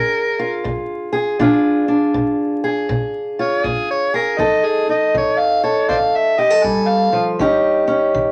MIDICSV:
0, 0, Header, 1, 4, 480
1, 0, Start_track
1, 0, Tempo, 749064
1, 902, Time_signature, 4, 2, 24, 8
1, 5330, End_track
2, 0, Start_track
2, 0, Title_t, "Harmonica"
2, 0, Program_c, 0, 22
2, 0, Note_on_c, 0, 70, 119
2, 558, Note_off_c, 0, 70, 0
2, 2182, Note_on_c, 0, 73, 94
2, 2341, Note_on_c, 0, 68, 90
2, 2350, Note_off_c, 0, 73, 0
2, 2497, Note_off_c, 0, 68, 0
2, 2503, Note_on_c, 0, 73, 101
2, 2656, Note_off_c, 0, 73, 0
2, 2660, Note_on_c, 0, 70, 87
2, 2815, Note_on_c, 0, 75, 97
2, 2825, Note_off_c, 0, 70, 0
2, 2982, Note_on_c, 0, 68, 92
2, 2992, Note_off_c, 0, 75, 0
2, 3136, Note_off_c, 0, 68, 0
2, 3140, Note_on_c, 0, 75, 89
2, 3296, Note_off_c, 0, 75, 0
2, 3318, Note_on_c, 0, 73, 97
2, 3454, Note_on_c, 0, 77, 92
2, 3464, Note_off_c, 0, 73, 0
2, 3608, Note_off_c, 0, 77, 0
2, 3612, Note_on_c, 0, 73, 85
2, 3769, Note_off_c, 0, 73, 0
2, 3773, Note_on_c, 0, 72, 61
2, 3773, Note_on_c, 0, 74, 61
2, 3773, Note_on_c, 0, 77, 87
2, 3820, Note_off_c, 0, 72, 0
2, 3825, Note_off_c, 0, 74, 0
2, 3949, Note_on_c, 0, 76, 101
2, 3959, Note_off_c, 0, 77, 0
2, 4098, Note_on_c, 0, 75, 95
2, 4108, Note_off_c, 0, 76, 0
2, 4250, Note_on_c, 0, 80, 93
2, 4259, Note_off_c, 0, 75, 0
2, 4408, Note_on_c, 0, 77, 101
2, 4418, Note_off_c, 0, 80, 0
2, 4671, Note_off_c, 0, 77, 0
2, 5330, End_track
3, 0, Start_track
3, 0, Title_t, "Steel-string acoustic guitar"
3, 0, Program_c, 1, 25
3, 0, Note_on_c, 1, 46, 75
3, 0, Note_on_c, 1, 62, 55
3, 0, Note_on_c, 1, 65, 59
3, 0, Note_on_c, 1, 68, 68
3, 250, Note_off_c, 1, 65, 0
3, 252, Note_on_c, 1, 65, 61
3, 387, Note_off_c, 1, 46, 0
3, 412, Note_on_c, 1, 46, 72
3, 713, Note_off_c, 1, 68, 0
3, 721, Note_on_c, 1, 68, 65
3, 864, Note_off_c, 1, 46, 0
3, 875, Note_off_c, 1, 68, 0
3, 878, Note_off_c, 1, 62, 0
3, 893, Note_on_c, 1, 46, 78
3, 896, Note_on_c, 1, 62, 62
3, 899, Note_off_c, 1, 65, 0
3, 902, Note_on_c, 1, 65, 65
3, 906, Note_on_c, 1, 68, 63
3, 1198, Note_off_c, 1, 62, 0
3, 1206, Note_on_c, 1, 62, 58
3, 1344, Note_off_c, 1, 46, 0
3, 1374, Note_on_c, 1, 46, 77
3, 1682, Note_off_c, 1, 68, 0
3, 1690, Note_on_c, 1, 68, 66
3, 1825, Note_off_c, 1, 46, 0
3, 1851, Note_on_c, 1, 46, 77
3, 2166, Note_off_c, 1, 65, 0
3, 2173, Note_on_c, 1, 65, 59
3, 2304, Note_off_c, 1, 46, 0
3, 2342, Note_on_c, 1, 46, 75
3, 2644, Note_off_c, 1, 68, 0
3, 2652, Note_on_c, 1, 68, 68
3, 2789, Note_off_c, 1, 46, 0
3, 2798, Note_off_c, 1, 62, 0
3, 2801, Note_off_c, 1, 68, 0
3, 2802, Note_off_c, 1, 65, 0
3, 2809, Note_on_c, 1, 53, 73
3, 2809, Note_on_c, 1, 63, 59
3, 2816, Note_on_c, 1, 69, 70
3, 3130, Note_off_c, 1, 63, 0
3, 3133, Note_on_c, 1, 63, 56
3, 3263, Note_off_c, 1, 53, 0
3, 3299, Note_on_c, 1, 53, 76
3, 3603, Note_off_c, 1, 69, 0
3, 3611, Note_on_c, 1, 69, 71
3, 3747, Note_off_c, 1, 53, 0
3, 3773, Note_on_c, 1, 53, 74
3, 4088, Note_off_c, 1, 69, 0
3, 4091, Note_on_c, 1, 67, 66
3, 4168, Note_off_c, 1, 67, 0
3, 4168, Note_on_c, 1, 69, 52
3, 4224, Note_off_c, 1, 53, 0
3, 4257, Note_on_c, 1, 55, 63
3, 4563, Note_off_c, 1, 55, 0
3, 4566, Note_on_c, 1, 53, 65
3, 4721, Note_off_c, 1, 63, 0
3, 4736, Note_off_c, 1, 69, 0
3, 4737, Note_off_c, 1, 53, 0
3, 4737, Note_on_c, 1, 51, 78
3, 4745, Note_on_c, 1, 61, 65
3, 4746, Note_on_c, 1, 63, 63
3, 4751, Note_on_c, 1, 67, 65
3, 5039, Note_off_c, 1, 61, 0
3, 5047, Note_on_c, 1, 61, 61
3, 5186, Note_off_c, 1, 51, 0
3, 5219, Note_on_c, 1, 51, 78
3, 5330, Note_off_c, 1, 51, 0
3, 5330, Note_off_c, 1, 61, 0
3, 5330, Note_off_c, 1, 63, 0
3, 5330, Note_off_c, 1, 67, 0
3, 5330, End_track
4, 0, Start_track
4, 0, Title_t, "Drums"
4, 417, Note_on_c, 9, 36, 70
4, 482, Note_off_c, 9, 36, 0
4, 895, Note_on_c, 9, 36, 67
4, 959, Note_off_c, 9, 36, 0
4, 1374, Note_on_c, 9, 36, 68
4, 1438, Note_off_c, 9, 36, 0
4, 1854, Note_on_c, 9, 36, 70
4, 1918, Note_off_c, 9, 36, 0
4, 2335, Note_on_c, 9, 36, 69
4, 2399, Note_off_c, 9, 36, 0
4, 2816, Note_on_c, 9, 36, 64
4, 2880, Note_off_c, 9, 36, 0
4, 3297, Note_on_c, 9, 36, 64
4, 3362, Note_off_c, 9, 36, 0
4, 3779, Note_on_c, 9, 36, 72
4, 3843, Note_off_c, 9, 36, 0
4, 4258, Note_on_c, 9, 36, 70
4, 4322, Note_off_c, 9, 36, 0
4, 4740, Note_on_c, 9, 36, 70
4, 4804, Note_off_c, 9, 36, 0
4, 5220, Note_on_c, 9, 36, 68
4, 5284, Note_off_c, 9, 36, 0
4, 5330, End_track
0, 0, End_of_file